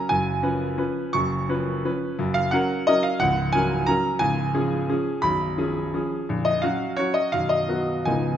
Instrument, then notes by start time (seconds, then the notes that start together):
grand piano
Already playing: A#5
0.09 F#1 F#2 G#5
0.43 F3 C#4 B4
0.78 F3 C#4 B4
1.13 F#1 F#2 C#6
1.49 F3 C#4 B4
1.85 F3 C#4 B4
2.19 F#1 F#2
2.34 F5
2.51 F#3 C#4 A#4 F#5
2.87 F#3 C#4 A#4 D#5
3.03 F5
3.20 C#1 C#2 F#5
3.53 F#3 C#4 A#4 G#5
3.87 F#3 C#4 A#4 A#5
4.19 C#1 C#2 G#5
4.54 F3 C#4 G#4
4.89 F3 C#4 G#4
5.22 B0 B1 B5
5.58 F3 C#4 G#4
5.94 F3 C#4 G#4
6.29 A#0 A#1
6.45 D#5
6.62 F#3 C#4 F#4 F5
6.97 F#3 C#4 F#4 C#5
7.14 D#5
7.32 B0 B1 F5
7.49 D#5
7.68 F#3 B3 F#4
8.05 C#1 C#2 F3 B3 D#4 G#5